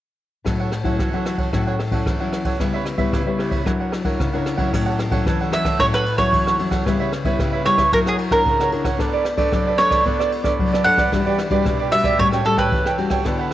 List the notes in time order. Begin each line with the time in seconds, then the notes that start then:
0.45 A2 F#3 C#4 E4 F#4 A4 C#5 F#5, kick, cross-stick, ride
0.60 A4 C#5 F#5
0.72 muted cavaquinho stroke, cross-stick, ride
0.83 F#3 C#4 E4 A4 C#5 F#5, kick, ride
0.99 E3 F#4 A4 C#5 F#5, kick, cross-stick, ride
1.13 F#3 C#4 E4 A4 C#5 F#5
1.25 F#4 A4 C#5 F#5, cross-stick, ride
1.38 A4 C#5 F#5, kick, ride
1.53 A2 F#3 C#4 E4 F#4 A4 C#5 F#5, kick, cross-stick, ride
1.67 A4 C#5 F#5
1.79 muted cavaquinho stroke, cross-stick, ride
1.91 F#3 C#4 E4 A4 C#5 F#5, kick, ride
2.05 E3, kick, cross-stick, ride
2.20 F#3 C#4 E4 A4 C#5 F#5
2.32 cross-stick, ride
2.44 A4 C#5 F#5, kick, ride
2.59 C#3 G3 B3 E4 G4 B4 C#5 E5, kick, cross-stick, ride
2.74 B4 C#5 E5
2.85 muted cavaquinho stroke, cross-stick, ride
2.97 G3 B3 E4 B4 C#5 E5, kick, ride
3.12 C#3 G4 B4 C#5 E5, kick, cross-stick, ride
3.26 G3 B3 E4 B4 C#5 E5
3.38 G4 B4 C#5 E5, cross-stick, ride
3.50 B4 C#5 E5, kick, ride
3.65 F#3 D4 E4 A#4 C#5 F#5, kick, cross-stick, ride
3.80 A#4 C#5 F#5
3.92 muted cavaquinho stroke, cross-stick, ride
4.04 D4 E4 A#4 C#5 F#5, kick, ride
4.19 C#3, kick, cross-stick, ride
4.33 D4 E4 A#4 C#5 F#5
4.46 cross-stick, ride
4.57 F#3 C#4 E4 A#4 C#5 F#5, kick, ride
4.72 A2 F#4 A4 C#5 F#5, kick, cross-stick, crash
4.86 A4 C#5 F#5
4.99 muted cavaquinho stroke, cross-stick, ride
5.11 F#3 C#4 E4 A4 C#5 F#5, kick, ride
5.26 E3 F#4 A4 C#5 F#5, kick, cross-stick, ride
5.41 A4 C#5 F#5
5.51 F#3 C#4 E4 F#4 A4 C#5 E5 F#5, cross-stick, ride
5.65 A4 C#5 F#5, kick, cross-stick, ride
5.79 A2 F#3 C#4 E4 F#4 A4 C#5 F#5, kick, ride
5.94 A4 B4 C#5 F#5, cross-stick
6.06 muted cavaquinho stroke, ride
6.18 F#3 C#4 E4 A4 C#5 F#5, kick, cross-stick, ride
6.33 E3, kick, ride
6.46 A4 C#5 F#5, cross-stick
6.59 F#3 C#4 E4, ride
6.71 A4 C#5 F#5, kick, cross-stick, ride
6.86 C#3 G3 B3 E4 G4 B4 C#5 E5, kick, cross-stick, ride
7.00 B4 C#5 E5
7.12 muted cavaquinho stroke, cross-stick, ride
7.24 G3 B3 E4 B4 C#5 E5, kick, ride
7.39 C#3 G4 B4 C#5 E5, kick, cross-stick, ride
7.53 B4 C#5 E5
7.65 G3 B3 E4 G4 B4 C#5 E5, cross-stick, ride
7.78 B4 C#5 E5, kick, cross-stick, ride
7.93 F#3 D4 E4 A#4 C#5 F#5, kick, ride
8.06 G#4 A#4 C#5 F#5, cross-stick
8.18 muted cavaquinho stroke, ride
8.31 D4 E4 A#4 C#5 F#5, kick, cross-stick, ride
8.45 C#3, kick, ride
8.60 A#4 C#5 F#5, cross-stick
8.71 D4 E4 A#4, ride
8.84 A#4 C#5 F#5, kick, cross-stick, ride
8.98 B3 D4 A4 B4 C#5 D5, kick, cross-stick, ride
9.13 A4 B4 D5
9.25 muted cavaquinho stroke, cross-stick, ride
9.37 D4 A4 B4 C#5 D5, kick, ride
9.51 F#3 D4 A4 B4 D5, kick, cross-stick, ride
9.66 A4 B4 D5
9.78 D4 A4 B4 C#5, cross-stick, ride
9.90 A4 B4 D5, kick, cross-stick, ride
10.05 B3 D4 A4 B4 C#5 D5, kick, ride
10.19 A4 B4 D5, cross-stick
10.32 muted cavaquinho stroke, ride
10.43 D4 A4 B4 C#5 D5, kick, cross-stick, ride
10.59 F#3, kick, ride
10.72 A4 B4 D5, cross-stick
10.84 D4 A4 C#5 F#5, ride
10.97 A4 B4 D5, kick, cross-stick, ride
11.12 E3 G3 D4 E4 F#4 G4 B4 D5, kick, cross-stick, ride
11.26 G3 D4 F#4 G4 B4 D5
11.38 muted cavaquinho stroke, cross-stick, ride
11.50 G3 D4 F#4 G4 B4 D5, kick, ride
11.65 B2 E4 G4 B4 D5, kick, cross-stick, ride
11.79 G4 B4 D5
11.91 G3 D4 E4 F#4 G4 B4 D5 E5, cross-stick, ride
12.04 G4 B4 D5, kick, cross-stick, ride
12.18 A2 G3 C#4 F#4 G4 A4 C#5 G5, kick, ride
12.32 G3 C#4 F#4 A4 C#5 G5, cross-stick
12.44 G3 C#4 F#4 A4, muted cavaquinho stroke, ride
12.57 A4 B4 C#5 G5, kick, cross-stick, ride
12.71 E3, kick, ride
12.86 A4 C#5 G5, cross-stick
12.98 G3 C#4 F#4, ride
13.10 A4 C#5 G5, kick, cross-stick, ride
13.25 D3 B3 D4 E4 F#4 A4 B4 F#5, kick, cross-stick, ride
13.39 A4 B4 F#5